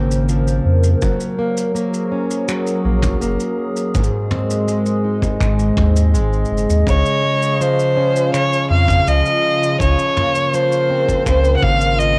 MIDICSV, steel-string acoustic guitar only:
0, 0, Header, 1, 2, 480
1, 0, Start_track
1, 0, Key_signature, -5, "major"
1, 0, Tempo, 731707
1, 669, Time_signature, 4, 2, 24, 8
1, 7995, End_track
2, 0, Start_track
2, 0, Title_t, "Steel-string acoustic guitar"
2, 0, Program_c, 0, 25
2, 0, Note_on_c, 0, 49, 83
2, 0, Note_on_c, 0, 53, 68
2, 0, Note_on_c, 0, 58, 58
2, 0, Note_on_c, 0, 60, 61
2, 180, Note_off_c, 0, 53, 0
2, 188, Note_on_c, 0, 53, 67
2, 667, Note_off_c, 0, 53, 0
2, 670, Note_on_c, 0, 54, 87
2, 716, Note_off_c, 0, 60, 0
2, 717, Note_off_c, 0, 49, 0
2, 907, Note_off_c, 0, 58, 0
2, 909, Note_on_c, 0, 58, 62
2, 1139, Note_off_c, 0, 58, 0
2, 1147, Note_on_c, 0, 58, 76
2, 1388, Note_on_c, 0, 61, 60
2, 1621, Note_off_c, 0, 54, 0
2, 1628, Note_on_c, 0, 54, 93
2, 1862, Note_off_c, 0, 58, 0
2, 1870, Note_on_c, 0, 58, 58
2, 2100, Note_off_c, 0, 58, 0
2, 2108, Note_on_c, 0, 58, 69
2, 2587, Note_on_c, 0, 44, 86
2, 2637, Note_off_c, 0, 54, 0
2, 2637, Note_off_c, 0, 58, 0
2, 2637, Note_off_c, 0, 61, 0
2, 2829, Note_on_c, 0, 60, 61
2, 3067, Note_on_c, 0, 56, 70
2, 3309, Note_on_c, 0, 63, 64
2, 3538, Note_off_c, 0, 44, 0
2, 3546, Note_on_c, 0, 44, 84
2, 3781, Note_off_c, 0, 60, 0
2, 3789, Note_on_c, 0, 60, 58
2, 4025, Note_off_c, 0, 56, 0
2, 4028, Note_on_c, 0, 56, 65
2, 4508, Note_on_c, 0, 49, 80
2, 4556, Note_off_c, 0, 44, 0
2, 4557, Note_off_c, 0, 60, 0
2, 4557, Note_off_c, 0, 63, 0
2, 4748, Note_off_c, 0, 56, 0
2, 4748, Note_on_c, 0, 56, 62
2, 4990, Note_on_c, 0, 53, 74
2, 5228, Note_on_c, 0, 61, 66
2, 5463, Note_off_c, 0, 49, 0
2, 5471, Note_on_c, 0, 49, 92
2, 5702, Note_off_c, 0, 56, 0
2, 5710, Note_on_c, 0, 56, 62
2, 5948, Note_off_c, 0, 53, 0
2, 5950, Note_on_c, 0, 53, 73
2, 6422, Note_off_c, 0, 49, 0
2, 6429, Note_on_c, 0, 49, 88
2, 6478, Note_off_c, 0, 56, 0
2, 6669, Note_on_c, 0, 58, 66
2, 6908, Note_off_c, 0, 53, 0
2, 6911, Note_on_c, 0, 53, 71
2, 7147, Note_off_c, 0, 61, 0
2, 7150, Note_on_c, 0, 60, 67
2, 7382, Note_off_c, 0, 49, 0
2, 7389, Note_on_c, 0, 49, 85
2, 7627, Note_off_c, 0, 58, 0
2, 7630, Note_on_c, 0, 58, 59
2, 7863, Note_off_c, 0, 53, 0
2, 7871, Note_on_c, 0, 53, 67
2, 7995, Note_off_c, 0, 49, 0
2, 7995, Note_off_c, 0, 53, 0
2, 7995, Note_off_c, 0, 58, 0
2, 7995, Note_off_c, 0, 60, 0
2, 7995, End_track
0, 0, End_of_file